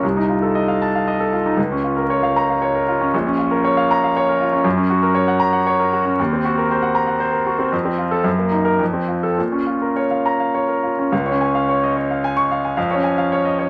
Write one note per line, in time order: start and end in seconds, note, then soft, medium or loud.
0.03 1.54 C2 soft
0.17 0.38 D#4 soft
0.30 0.51 F4 soft
0.42 0.64 A4 soft
0.55 0.76 D#5 soft
0.68 0.89 F5 soft
0.82 1.02 A5 soft
0.95 1.15 F5 soft
1.08 1.28 D#5 soft
1.20 1.40 A4 soft
1.33 1.53 F4 soft
1.46 1.58 D#4 soft
1.57 3.09 C#2 soft
1.72 1.92 C#4 soft
1.84 2.04 F4 soft
1.97 2.17 A#4 soft
2.10 2.31 C#5 soft
2.23 2.44 F5 soft
2.36 2.57 A#5 medium
2.50 2.70 F5 soft
2.62 2.82 C#5 soft
2.75 2.95 A#4 soft
2.88 3.09 F4 soft
3.01 3.14 C#4 soft
3.14 4.62 A#1 medium
3.27 3.47 C#4 soft
3.39 3.60 F4 soft
3.51 3.72 A#4 soft
3.65 3.85 C#5 medium
3.77 3.98 F5 soft
3.91 4.11 A#5 medium
4.04 4.23 F5 soft
4.17 4.36 C#5 medium
4.29 4.48 A#4 soft
4.41 4.61 F4 soft
4.53 4.65 C#4 soft
4.64 6.15 F#2 medium
4.77 4.98 C#4 soft
4.90 5.11 F#4 soft
5.02 5.23 A#4 soft
5.15 5.36 C#5 medium
5.28 5.49 F#5 soft
5.40 5.61 A#5 medium
5.53 5.74 F#5 soft
5.67 5.88 C#5 medium
5.80 6.01 A#4 soft
5.93 6.14 F#4 soft
6.05 6.19 C#4 soft
6.20 7.70 D#2 medium
6.33 6.53 C4 soft
6.45 6.65 F#4 soft
6.58 6.78 A#4 soft
6.71 6.91 C5 soft
6.82 7.03 F#5 soft
6.95 7.16 A#5 medium
7.07 7.29 F#5 soft
7.20 7.42 C5 medium
7.33 7.54 A#4 soft
7.47 7.68 F#4 soft
7.59 7.73 C4 soft
7.72 8.24 F2 soft
7.85 8.07 C4 soft
7.98 8.20 F4 soft
8.11 8.25 A4 medium
8.24 8.78 F#2 medium
8.39 8.61 A#3 soft
8.52 8.74 D#4 soft
8.65 8.80 A#4 medium
8.79 9.35 F2 soft
8.93 9.17 C4 soft
9.08 9.32 F4 soft
9.23 9.38 A4 soft
9.38 11.08 A#2 soft
9.52 9.76 C#4 soft
9.67 9.90 F4 soft
9.82 10.05 A#4 soft
9.96 10.20 C#5 soft
10.11 10.34 F5 soft
10.26 10.48 A#5 soft
10.40 10.63 F5 soft
10.54 10.77 C#5 soft
10.68 10.92 A#4 soft
10.83 11.06 F4 soft
10.99 11.12 C#4 soft
11.12 12.73 C#2 medium
11.12 11.35 F5 soft
11.26 11.49 C#5 soft
11.32 11.62 C#4 soft
11.41 11.63 G#5 soft
11.55 11.77 F5 soft
11.69 11.91 C#5 soft
11.84 11.96 D#5 soft
11.96 12.18 C#5 soft
12.11 12.32 F5 soft
12.24 12.45 G#5 medium
12.37 12.58 C#6 medium
12.51 12.72 F5 soft
12.65 12.77 G#5 soft
12.77 13.70 F2 medium
12.77 12.98 F5 soft
12.91 13.12 C#5 soft
12.95 13.23 C#4 soft
13.04 13.25 G#5 soft
13.18 13.39 F5 soft
13.32 13.53 C#5 medium
13.45 13.58 D#5 soft
13.59 13.70 C#5 soft